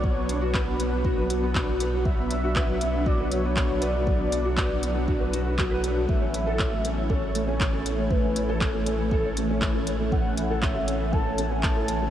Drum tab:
HH |-x-x-x-x|-x-x-x-x|-x-x-x-x|-x-x-x-x|
CP |--x---x-|--x---x-|--x---x-|--x---x-|
BD |o-o-o-o-|o-o-o-o-|o-o-o-o-|o-o-o-o-|

HH |-x-x-x-x|-x-x-x-x|
CP |--x---x-|--x---x-|
BD |o-o-o-o-|o-o-o-o-|